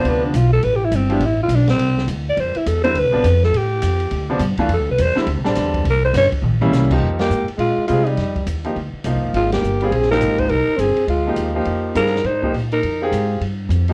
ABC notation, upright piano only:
X:1
M:4/4
L:1/8
Q:"Swing" 1/4=207
K:Ddor
V:1 name="Upright piano"
[C,F,B,D]2 z4 z [F,B,EG] | z8 | z3 [D,G,CE] z [C,F,B,D] z2 | z4 z [C,F,B,D] z [E,A,DF] |
z3 [D,G,CE] z [D,G,CD]3 | z4 z [G,_B,_DE]2 [F,B,_EG]- | [K:Fdor] [F,B,EG]2 z4 [G,CFA] z | z3 [F,B,EG] z2 [F,B,EF]2- |
[F,B,EF] z2 [G,CFA] z [F,B,EG]3 | z4 z [F,B,EG]2 [F,B,EG]- | [F,B,EG]2 [G,CFA] z2 [F,B,EG] z2 | z [CFGA]3 z3 [F,B,EG] |]